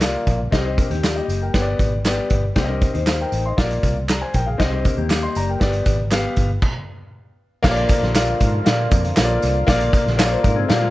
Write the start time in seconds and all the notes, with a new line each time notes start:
Already playing: C2
0.00 A#3 F4 D5, snare, clap, closed hi-hat, tambourine
0.27 A#1, kick, closed hi-hat, tambourine
0.51 C2 C4 G4 D#5, kick, snare, closed hi-hat, tambourine
0.65 D#4 C5
0.78 D4 A#4, kick, closed hi-hat, tambourine
0.90 D#2 A#3 G4, closed hi-hat
1.03 F4 D5, snare, clap, closed hi-hat, tambourine
1.16 G4 D#5
1.28 F#1, closed hi-hat, tambourine
1.42 A#4 G5
1.54 G1 B3 G4 C#5, kick, snare, closed hi-hat, tambourine
1.62 D5
1.79 G#1, kick, closed hi-hat, tambourine
2.05 B3 G4 D5, snare, clap, closed hi-hat, tambourine
2.30 G1, kick, closed hi-hat
2.55 C2 A#3 C4 G4 D5, kick, snare, closed hi-hat, tambourine
2.64 D#5
2.69 D4 A#4
2.81 kick, closed hi-hat, tambourine
2.94 D#2 D#4 C5, closed hi-hat
3.07 F5, snare, clap, closed hi-hat, tambourine
3.21 A#4 G5
3.32 A1, closed hi-hat, tambourine
3.46 D#5 C6
3.57 A#1 A#3 F4 D5, kick, snare, closed hi-hat, tambourine
3.71 closed hi-hat
3.83 C2, kick, closed hi-hat, tambourine
4.09 D5 A#5, snare, clap, closed hi-hat, tambourine
4.21 C5 G#5
4.34 A#1 A#4 G5, kick, closed hi-hat, tambourine
4.46 G#4 F5
4.58 C2 C4 G4 D#5, kick, snare, closed hi-hat, tambourine
4.72 D#4 C5
4.85 D4 A#4, kick, closed hi-hat, tambourine
4.97 D#2 A#3 G4
5.09 F5 D6, snare, clap, closed hi-hat, tambourine
5.23 D#5 C6
5.35 F#1 D5 A#5, closed hi-hat, tambourine
5.49 A#4 G5
5.60 G1 B3 G4 D5, kick, snare, closed hi-hat, tambourine
5.73 closed hi-hat
5.86 G#1, kick, closed hi-hat, tambourine
6.10 B3 G4 F5, snare, clap, closed hi-hat, tambourine
6.36 G1, kick, closed hi-hat, tambourine
6.62 kick, crash
7.63 A#1 D3 F3 A#3 F4 C#5, kick, snare, crash, tambourine
7.70 D5
7.76 closed hi-hat
7.89 kick, closed hi-hat, tambourine
8.02 A#1, snare
8.14 A#3 F4 D5, snare, clap, closed hi-hat, tambourine
8.40 G#2, kick, closed hi-hat, tambourine
8.65 A#2 A#3 F4 D5, snare, closed hi-hat, tambourine
8.91 F2, kick, closed hi-hat, tambourine
9.05 closed hi-hat
9.16 A#1 A#3 F4 C#5, snare, clap, closed hi-hat, tambourine
9.24 D5
9.42 C2, closed hi-hat, tambourine
9.67 A#1 A#3 F4 D5, kick, snare, closed hi-hat, tambourine
9.80 closed hi-hat
9.93 kick, closed hi-hat, tambourine
10.06 A#1, snare
10.17 A#3 F4 C#5 D5, snare, clap, closed hi-hat, tambourine
10.25 D5
10.31 C5
10.43 G#2 D4 A#4, kick, closed hi-hat, tambourine
10.56 C4 G#4
10.68 A#2 A#3 F4 G4 D5, snare, closed hi-hat, tambourine
10.82 G#3 F4